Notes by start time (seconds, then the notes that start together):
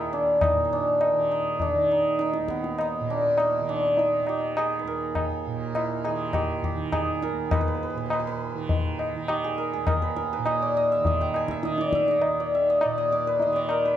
Already playing: D#2 A#2 D#3 E4 G#4 A#4
0.13 D4
0.41 D#4, tabla na, tabla ge
0.52 A#2
0.65 D#4
0.73 D4
1.01 tabla na
1.13 D#3
1.31 D#4
1.60 D4, tabla tin, tabla ge
1.75 D#3
1.91 D#4
2.19 D#4, tabla te
2.34 tabla te
2.38 D#2
2.48 B3, tabla ke
2.64 tabla te
2.79 D#4, tabla na
3.00 A#2
3.10 D4
3.38 D#4, tabla na
3.61 D#3
3.69 D4
3.97 D#4, tabla tin
4.22 D#3
4.27 G4, tabla na
4.57 G#4, tabla na
4.79 B4
4.83 D#2 A#4
5.15 tabla na, tabla ge
5.47 A#2
5.75 E4, tabla na
6.04 D#3 G#4, tabla na
6.33 G4, tabla na, tabla ge
6.63 G4, tabla ge
6.71 D#3
6.92 G#4, tabla na, tabla ge
7.23 A#4, tabla te
7.32 D#2
7.51 B4, tabla na, tabla ge
7.61 B4
7.68 B4
7.75 B4
7.83 B4
7.90 B4
7.95 A#2 B4
8.06 B4
8.10 B4, tabla na
8.20 B4
8.27 B4
8.54 D#3
8.69 tabla tin, tabla ge
8.99 tabla na
9.16 D#3
9.28 G4, tabla na
9.44 G#4
9.58 A#4
9.73 D#2 G#4
9.87 A#4, tabla na, tabla ge
10.02 B4
10.16 A#4, tabla te
10.33 B4
10.38 A#2
10.46 D#5, tabla na
10.62 D5
10.77 D#5
10.92 E5
11.00 D#3
11.05 D#5, tabla tin, tabla ge
11.21 G5
11.34 G#5, tabla na
11.48 E5, tabla ke
11.62 D#3 D#5, tabla te
11.78 D5, tabla te
11.93 E5, tabla ke
12.08 D#5, tabla te
12.22 D#2, tabla na
12.40 D5
12.55 E5
12.70 D#5
12.81 A#2 D5, tabla na
12.98 D#5
13.12 D5
13.27 B4
13.40 D#5, tabla tin
13.46 D#3
13.53 D5 D#5
13.69 A#4, tabla na
13.85 B4